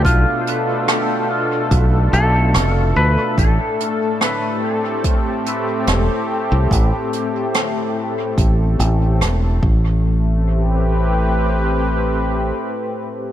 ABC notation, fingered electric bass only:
X:1
M:4/4
L:1/16
Q:"Swing 16ths" 1/4=72
K:Am
V:1 name="Fingered electric bass" clef=bass
B,,, z6 z B,,,2 B,,,2 F,,,2 D,, z | A,,, z8 z3 E,,, z2 C,, | A,,, z6 z A,,,2 A,,,2 E,,,2 A,,,2- | A,,,12 z4 |]